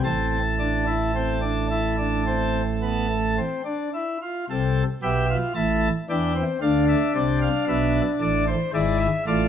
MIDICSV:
0, 0, Header, 1, 2, 480
1, 0, Start_track
1, 0, Key_signature, 0, "minor"
1, 0, Tempo, 1107011
1, 25, Time_signature, 4, 2, 24, 8
1, 1944, Tempo, 1063830
1, 4200, End_track
2, 0, Start_track
2, 0, Title_t, "Pipe organ"
2, 0, Program_c, 0, 19
2, 18, Note_on_c, 0, 45, 77
2, 18, Note_on_c, 0, 60, 67
2, 18, Note_on_c, 0, 81, 81
2, 21, Note_on_c, 0, 33, 76
2, 169, Note_off_c, 0, 60, 0
2, 258, Note_on_c, 0, 62, 78
2, 364, Note_off_c, 0, 62, 0
2, 377, Note_on_c, 0, 64, 74
2, 483, Note_off_c, 0, 64, 0
2, 500, Note_on_c, 0, 60, 77
2, 605, Note_off_c, 0, 60, 0
2, 614, Note_on_c, 0, 62, 67
2, 722, Note_off_c, 0, 62, 0
2, 742, Note_on_c, 0, 64, 67
2, 847, Note_off_c, 0, 64, 0
2, 860, Note_on_c, 0, 62, 66
2, 966, Note_off_c, 0, 62, 0
2, 983, Note_on_c, 0, 60, 71
2, 1133, Note_off_c, 0, 60, 0
2, 1224, Note_on_c, 0, 59, 61
2, 1328, Note_off_c, 0, 59, 0
2, 1346, Note_on_c, 0, 57, 59
2, 1449, Note_off_c, 0, 57, 0
2, 1465, Note_on_c, 0, 60, 71
2, 1467, Note_off_c, 0, 81, 0
2, 1468, Note_off_c, 0, 45, 0
2, 1469, Note_off_c, 0, 33, 0
2, 1569, Note_off_c, 0, 60, 0
2, 1584, Note_on_c, 0, 62, 65
2, 1689, Note_off_c, 0, 62, 0
2, 1709, Note_on_c, 0, 64, 67
2, 1811, Note_off_c, 0, 64, 0
2, 1830, Note_on_c, 0, 65, 71
2, 1930, Note_off_c, 0, 65, 0
2, 1952, Note_on_c, 0, 36, 71
2, 1953, Note_on_c, 0, 69, 77
2, 1954, Note_on_c, 0, 48, 79
2, 2100, Note_off_c, 0, 36, 0
2, 2100, Note_off_c, 0, 69, 0
2, 2101, Note_off_c, 0, 48, 0
2, 2190, Note_on_c, 0, 35, 86
2, 2190, Note_on_c, 0, 47, 78
2, 2190, Note_on_c, 0, 76, 97
2, 2191, Note_on_c, 0, 67, 85
2, 2293, Note_off_c, 0, 67, 0
2, 2312, Note_on_c, 0, 65, 82
2, 2338, Note_off_c, 0, 35, 0
2, 2338, Note_off_c, 0, 47, 0
2, 2339, Note_off_c, 0, 76, 0
2, 2414, Note_off_c, 0, 65, 0
2, 2425, Note_on_c, 0, 81, 91
2, 2427, Note_on_c, 0, 33, 81
2, 2428, Note_on_c, 0, 64, 87
2, 2429, Note_on_c, 0, 45, 87
2, 2575, Note_off_c, 0, 81, 0
2, 2576, Note_off_c, 0, 33, 0
2, 2576, Note_off_c, 0, 64, 0
2, 2577, Note_off_c, 0, 45, 0
2, 2671, Note_on_c, 0, 52, 82
2, 2672, Note_on_c, 0, 62, 76
2, 2673, Note_on_c, 0, 40, 68
2, 2674, Note_on_c, 0, 79, 86
2, 2773, Note_off_c, 0, 62, 0
2, 2790, Note_on_c, 0, 60, 71
2, 2819, Note_off_c, 0, 52, 0
2, 2820, Note_off_c, 0, 40, 0
2, 2821, Note_off_c, 0, 79, 0
2, 2892, Note_off_c, 0, 60, 0
2, 2907, Note_on_c, 0, 38, 77
2, 2907, Note_on_c, 0, 77, 90
2, 2909, Note_on_c, 0, 50, 75
2, 2909, Note_on_c, 0, 62, 75
2, 3011, Note_off_c, 0, 77, 0
2, 3029, Note_on_c, 0, 76, 92
2, 3056, Note_off_c, 0, 38, 0
2, 3058, Note_off_c, 0, 50, 0
2, 3132, Note_off_c, 0, 76, 0
2, 3148, Note_on_c, 0, 48, 81
2, 3149, Note_on_c, 0, 74, 89
2, 3150, Note_on_c, 0, 36, 77
2, 3252, Note_off_c, 0, 74, 0
2, 3267, Note_on_c, 0, 77, 86
2, 3297, Note_off_c, 0, 48, 0
2, 3298, Note_off_c, 0, 36, 0
2, 3371, Note_off_c, 0, 77, 0
2, 3389, Note_on_c, 0, 35, 80
2, 3389, Note_on_c, 0, 47, 77
2, 3389, Note_on_c, 0, 76, 105
2, 3537, Note_off_c, 0, 35, 0
2, 3537, Note_off_c, 0, 47, 0
2, 3537, Note_off_c, 0, 76, 0
2, 3625, Note_on_c, 0, 45, 82
2, 3625, Note_on_c, 0, 74, 91
2, 3626, Note_on_c, 0, 33, 84
2, 3729, Note_off_c, 0, 74, 0
2, 3732, Note_off_c, 0, 62, 0
2, 3746, Note_on_c, 0, 72, 92
2, 3774, Note_off_c, 0, 33, 0
2, 3774, Note_off_c, 0, 45, 0
2, 3848, Note_off_c, 0, 72, 0
2, 3863, Note_on_c, 0, 32, 85
2, 3864, Note_on_c, 0, 44, 78
2, 3866, Note_on_c, 0, 64, 81
2, 3866, Note_on_c, 0, 74, 104
2, 3968, Note_off_c, 0, 74, 0
2, 3982, Note_on_c, 0, 76, 90
2, 4012, Note_off_c, 0, 32, 0
2, 4013, Note_off_c, 0, 44, 0
2, 4014, Note_off_c, 0, 64, 0
2, 4086, Note_off_c, 0, 76, 0
2, 4103, Note_on_c, 0, 33, 87
2, 4104, Note_on_c, 0, 65, 86
2, 4105, Note_on_c, 0, 45, 85
2, 4105, Note_on_c, 0, 74, 108
2, 4200, Note_off_c, 0, 33, 0
2, 4200, Note_off_c, 0, 45, 0
2, 4200, Note_off_c, 0, 65, 0
2, 4200, Note_off_c, 0, 74, 0
2, 4200, End_track
0, 0, End_of_file